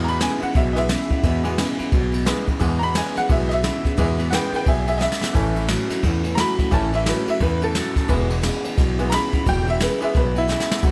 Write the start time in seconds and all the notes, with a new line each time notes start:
Already playing: E2 E3 G#3 B3
0.04 E2 B2 E4 A#5, ride
0.08 E3 G#3 B3 B5
0.20 E2 B2 C#3 E3 G#3 B3 E4 G#5, snare, ride
0.40 E2 C#3 E3 G#3 B3 E4 F#5, muted upright bass stroke, ride
0.54 B1 E2 B2 E3 G#3 B3 E4 E5, kick, snare, ride
0.73 B2 E3 G#3 B3 E4 D#5, snare, ride
0.78 E3 E5
0.88 E2 B2 C#3 E3 G#3 B3 E4, snare, ride
1.09 E2 C#3 E3 G#3 B3 E4, kick, ride
1.23 E2 B2 E3 G#3 B3 E4, kick, ride
1.43 E2 E3 G#3 B3 E4, ride
1.58 E2 B2 C#3 E3 G#3 B3 E4, snare, ride
1.79 E2 C#3 E3 G#3 B3 E4, muted upright bass stroke, ride
1.92 B1 E2 B2 E3 G#3 B3 E4, kick, ride
2.12 E2 B2 E3 G#3 B3 E4, ride
2.25 E2 B2 C#3 E3 G#3 B3 E4, snare, ride
2.46 E2 C#3 E3 G#3 B3 E4, kick, ride
2.59 E2 B2 E3 G#3 B3 E4, kick, ride
2.79 E2 B3 E4 A#5, ride
2.83 B2 E3 G#3 B5
2.94 E2 B2 C#3 E3 G#3 B3 E4 G#5, snare, ride
3.15 E2 C#3 E3 G#3 B3 E4 F#5, muted upright bass stroke, snare, ride
3.28 B1 E2 B2 E3 G#3 B3 E4, kick, ride
3.32 E5
3.49 E2 B2 E3 G#3 B3 E4 D#5, snare, ride
3.53 E5
3.62 E2 B2 C#3 E3 G#3 B3 E4, snare, ride
3.84 E2 C#3 E3 G#3 B3 E4, muted upright bass stroke, kick, snare, ride
3.97 E2 B2 E3 G#3 B3 E4, kick, ride
4.18 E2 B2 E3 G#3 B3 E4, ride
4.30 E2 B2 C#3 E3 G#3 B3 E4 B4 F#5, snare, ride
4.35 G5
4.52 E2 C#3 E3 G#3 B3 E4 B4 G5, muted upright bass stroke, ride
4.65 B1 E2 B2 E3 G#3 B3 E4 G#4 E5, kick, ride
4.86 E2 B2 E3 G#3 B3 E4 G#4 E5, ride
4.98 E2 B2 C#3 E3 G#3 B3 E4 D#5, snare
5.02 E5
5.12 snare
5.21 E2 C#3 E3 G#3 B3 E4, muted upright bass stroke, snare
5.33 A1 A2 E3 A3 C#4 E4, kick, ride, splash
5.55 A2 E3 A3 C#4 E4, ride
5.68 A2 E3 F#3 A3 C#4 E4, snare, ride
5.89 A2 F#3 A3 C#4 E4, muted upright bass stroke, snare, ride
6.02 E2 A2 E3 A3 C#4 E4, kick, snare, ride
6.23 A2 E3 A3 C#4 E4, ride
6.35 A2 E3 F#3 A3 C#4 A#5, snare, ride
6.39 E4 B5
6.58 A2 F#3 A3 C#4 E4, muted upright bass stroke, kick, snare, ride
6.71 A1 A2 E3 A3 C#4 E4 A5, kick, ride
6.92 A2 E3 A3 C#4 E4 E5, ride
7.06 A2 E3 F#3 A3 C#4 E4 B4, snare, ride
7.27 A2 F#3 A3 C#4 E4 E5, muted upright bass stroke, ride
7.40 E2 A2 E3 A3 C#4 E4 B4, kick, ride
7.61 A2 E3 A3 C#4 E4 A4, ride
7.74 A2 E3 F#3 A3 C#4 E4, snare, ride
7.95 A2 F#3 A3 C#4 E4, muted upright bass stroke, kick, snare, ride
8.08 E1 E2 B2 E3 G#3 B3 E4, kick, ride
8.29 E2 B2 E3 G#3 B3 E4, ride
8.42 E2 B2 C#3 E3 G#3 B3 E4, snare, ride
8.63 E2 C#3 E3 G#3 B3 E4, muted upright bass stroke, ride
8.77 B1 E2 B2 E3 G#3 B3 E4, kick, snare, ride
8.98 E2 B2 E3 G#3 B3 E4, ride
9.10 E2 B2 C#3 E3 G#3 B3 E4 A#5, snare, ride
9.14 B5
9.32 E2 C#3 E3 G#3 B3 E4, muted upright bass stroke, kick, snare, ride
9.46 E1 E2 B2 E3 G#3 B3 E4 G5, kick, ride
9.67 E2 B2 E3 G#3 B3 E4 E5, ride
9.80 E2 B2 C#3 E3 G#3 B3 E4 B4, snare, ride
10.01 E2 C#3 E3 G#3 B3 E4 E5, muted upright bass stroke, ride
10.14 B1 E2 B2 E3 G#3 B3 E4 B4, kick, snare, ride
10.34 E2 B2 E3 G#3 B3 E4, ride
10.38 E4
10.47 E2 B2 C#3 E3 G#3 B3 E4, snare
10.60 snare
10.69 E2 C#3 E3 G#3 B3 E4, muted upright bass stroke, snare
10.82 B1 B2 F#3 B3 D#4 F#4, kick, ride